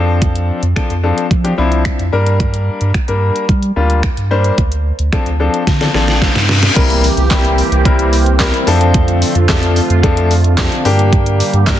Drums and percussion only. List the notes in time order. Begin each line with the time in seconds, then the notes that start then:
0.22 kick, closed hi-hat
0.35 closed hi-hat
0.63 closed hi-hat
0.76 finger snap, kick, closed hi-hat
0.90 closed hi-hat
1.18 closed hi-hat
1.31 kick, closed hi-hat
1.45 closed hi-hat
1.72 closed hi-hat
1.85 finger snap, kick, closed hi-hat
1.99 closed hi-hat
2.26 closed hi-hat
2.40 kick, closed hi-hat
2.54 closed hi-hat
2.81 closed hi-hat
2.94 finger snap, kick, closed hi-hat
3.08 closed hi-hat
3.36 closed hi-hat
3.49 kick, closed hi-hat
3.63 closed hi-hat
3.90 closed hi-hat
4.03 finger snap, kick, closed hi-hat
4.17 closed hi-hat
4.44 closed hi-hat
4.58 kick, closed hi-hat
4.72 closed hi-hat
4.99 closed hi-hat
5.13 finger snap, kick, closed hi-hat
5.26 closed hi-hat
5.54 closed hi-hat
5.67 kick, snare, closed hi-hat
5.81 snare, closed hi-hat
5.94 snare
6.08 snare, closed hi-hat
6.22 kick, snare, closed hi-hat
6.35 snare, closed hi-hat
6.49 snare
6.63 snare, closed hi-hat
6.76 kick, closed hi-hat, crash
6.90 closed hi-hat
7.04 open hi-hat
7.17 closed hi-hat
7.30 kick, snare, clap, closed hi-hat
7.45 closed hi-hat
7.58 open hi-hat
7.72 closed hi-hat
7.85 kick, closed hi-hat
7.99 closed hi-hat
8.13 open hi-hat
8.26 closed hi-hat
8.39 kick, snare, clap, closed hi-hat
8.54 closed hi-hat
8.67 open hi-hat
8.81 closed hi-hat
8.94 kick, closed hi-hat
9.08 closed hi-hat
9.22 open hi-hat
9.35 closed hi-hat
9.49 kick, snare, clap, closed hi-hat
9.63 closed hi-hat
9.76 open hi-hat
9.90 closed hi-hat
10.03 kick, closed hi-hat
10.17 closed hi-hat
10.31 open hi-hat
10.44 closed hi-hat
10.57 kick, snare, clap, closed hi-hat
10.72 closed hi-hat
10.85 open hi-hat
10.99 closed hi-hat
11.13 kick, closed hi-hat
11.26 closed hi-hat
11.40 open hi-hat
11.53 closed hi-hat
11.67 kick, snare, clap, closed hi-hat